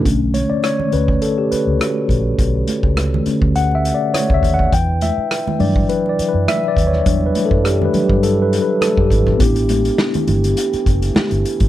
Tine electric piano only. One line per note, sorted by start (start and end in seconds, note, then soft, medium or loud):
0.00 0.19 D4 medium
0.04 0.44 D3 soft
0.04 0.45 A3 soft
0.04 0.45 C#4 soft
0.34 0.50 C#5 medium
0.50 0.64 D5 medium
0.64 0.94 C#5 loud
0.92 1.19 D3 soft
0.92 1.19 A3 soft
0.92 1.19 C#4 soft
0.92 1.06 B4 medium
1.22 1.38 A4 medium
1.38 1.44 G4 medium
1.52 1.81 B4 medium
1.80 2.07 F#4 medium
3.26 4.68 D3 medium
3.26 4.68 A3 soft
3.26 4.69 C#4 medium
3.56 3.76 F#5 loud
3.75 3.95 E5 medium
3.94 4.14 D5 medium
4.14 4.32 C#5 loud
4.34 4.54 E5 medium
4.54 4.73 F#5 medium
4.73 5.03 G5 medium
5.02 5.62 E5 medium
5.59 7.90 E3 soft
5.59 7.05 F#3 medium
5.59 7.05 D4 medium
5.59 5.90 D5 medium
5.89 6.09 B4 medium
6.09 6.29 D5 medium
6.29 6.48 B4 medium
6.48 6.66 E5 loud
6.68 6.77 D5 medium
6.87 7.23 C#5 medium
7.06 7.32 F#3 soft
7.06 7.32 G3 soft
7.06 7.33 D4 medium
7.26 7.46 B4 medium
7.45 7.65 A4 medium
7.65 7.85 G4 medium
7.85 8.05 B4 medium
7.93 8.33 F#3 medium
7.93 8.34 G3 soft
7.93 8.34 D4 medium
8.04 8.24 G4 medium
8.23 8.43 A4 medium
8.42 8.61 B4 medium
8.62 8.82 B4 medium
8.81 9.01 A4 medium
9.01 9.28 G4 medium
9.38 11.69 B3 medium
9.38 9.47 C#4 soft
9.38 11.69 E4 medium
9.42 11.69 D4 medium
9.42 11.69 G4 medium